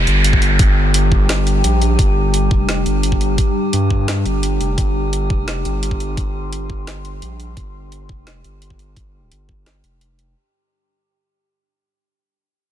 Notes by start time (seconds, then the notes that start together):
Already playing: G3 D4 G4 G5, downlifter
0.07 G1, closed hi-hat
0.24 closed hi-hat
0.33 kick
0.42 closed hi-hat
0.59 G1, kick, closed hi-hat
0.94 closed hi-hat
1.12 kick
1.29 snare, closed hi-hat
1.47 closed hi-hat
1.64 A#1, closed hi-hat
1.82 closed hi-hat
1.99 G1, kick, closed hi-hat
2.34 closed hi-hat
2.51 F1, kick
2.69 snare, closed hi-hat
2.86 G1, closed hi-hat
3.03 closed hi-hat
3.12 kick
3.21 closed hi-hat
3.38 kick, closed hi-hat
3.73 G2, closed hi-hat
3.91 kick
4.08 snare, closed hi-hat
4.25 G1, closed hi-hat
4.43 closed hi-hat
4.60 F1, closed hi-hat
4.78 G1, kick, closed hi-hat
5.13 C6, closed hi-hat
5.30 F1, kick
5.48 snare, closed hi-hat
5.65 G1, closed hi-hat
5.83 closed hi-hat
5.91 kick
6.00 closed hi-hat
6.17 G1, kick, closed hi-hat
6.53 closed hi-hat
6.70 kick
6.87 snare, closed hi-hat
7.05 closed hi-hat
7.22 A#1, closed hi-hat
7.40 closed hi-hat
7.57 G1, kick, closed hi-hat
7.92 closed hi-hat
8.09 F1, kick
8.27 snare, closed hi-hat
8.44 G1, closed hi-hat
8.62 closed hi-hat
8.70 kick
8.79 closed hi-hat
8.96 G1, kick, closed hi-hat
9.32 G1, closed hi-hat
9.49 kick
9.66 snare, closed hi-hat
9.84 F1, closed hi-hat
10.01 closed hi-hat
10.19 closed hi-hat